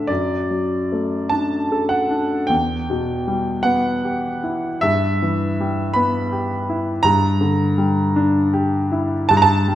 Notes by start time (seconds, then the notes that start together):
Already playing: A2 A3 D4 A4 E5
0.07 F#2 D5
0.51 F#3
0.92 A3
1.29 D4 A5
1.72 A4
1.89 F#5
2.11 D4
2.47 E2 G5
2.90 B2
3.27 G3
3.63 B3 F#5
4.04 G4
4.44 E4
4.81 G2 E5
5.22 E3
5.60 G3
5.93 B3 B5
6.32 G4
6.70 E4
7.03 G2 A#5
7.41 D3
7.78 G3
8.16 D4
8.53 G4
8.92 E4
9.29 G2 A5
9.37 A#5
9.42 A5
9.68 G3